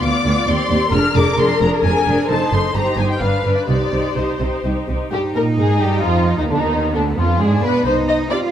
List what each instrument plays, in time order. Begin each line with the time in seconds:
Already playing: violin section D5
0.01 cello section D2, double bass section D2, viola section B3 F4, violin section D6
0.24 double bass section D2, cello section D2, viola section B3 F4
0.46 double bass section D#2, cello section D#2, viola section C4 G4, violin section C6
0.69 double bass section D#2, cello section D#2, viola section C4 G4
0.92 double bass section F1, cello section F2, viola section D4 G#4, violin section A#4 F6
1.15 double bass section F1, cello section F2, viola section D4 G#4, violin section D6
1.38 double bass section F1, cello section F2, viola section D4 G#4, violin section C6
1.60 double bass section F1, cello section F2, viola section D4 G#4, violin section A#5
1.83 double bass section F1, cello section F2, viola section D4 G#4, violin section G#5
2.07 double bass section F1, cello section F2, viola section D4 G#4
2.29 double bass section F#1, cello section F#2, viola section D#4 C5, violin section A4 A5
2.52 double bass section F#1, cello section F#2, viola section D#4 C5, violin section C6
2.74 double bass section G1, cello section G2, viola section D#4 C5, violin section G4 A#5
2.97 double bass section G1, cello section G2, viola section D#4 C5, violin section G#5
3.09 violin section G5
3.20 double bass section G1, cello section G2, viola section D4 B4, violin section B4 F5
3.44 double bass section G1, cello section G2, viola section D4 B4
3.55 violin section D5
3.67 double bass section C2, cello section C3, viola section D#4 G4, violin section C5 D5
3.92 double bass section C2, cello section C3, viola section D#4 G4
4.15 double bass section C2, cello section C3, viola section D#4 G4, violin section C5
4.40 double bass section C2, cello section C3, viola section D#4 G4
4.64 double bass section C2, cello section C3, viola section D#4 G4
4.88 double bass section C2, cello section C3, viola section D#4 G4
5.11 double bass section G2, viola section G3, cello section D#4, violin section G4
5.34 double bass section A#2, viola section A#3, violin section A#4
5.58 double bass section G#2, viola section G#3, violin section G#4
5.81 double bass section G2, viola section G3, violin section G4
6.04 double bass section F2, viola section F3, violin section F4
6.38 double bass section D#2, viola section D#3, violin section D#4
6.48 double bass section D2, viola section D3, cello section B3, violin section D4
6.60 double bass section D#2, viola section D#3, violin section D#4
6.95 double bass section D2, viola section D3, violin section D4
7.17 double bass section F2, viola section F3, violin section F4
7.40 double bass section G#2, viola section G#3, cello section D4, violin section G#4
7.62 double bass section B2, viola section B3, violin section B4
7.85 double bass section C2, cello section D#4, violin section C5
8.09 violin section D#5
8.29 viola section C4 G4, cello section F4, violin section D5 D#5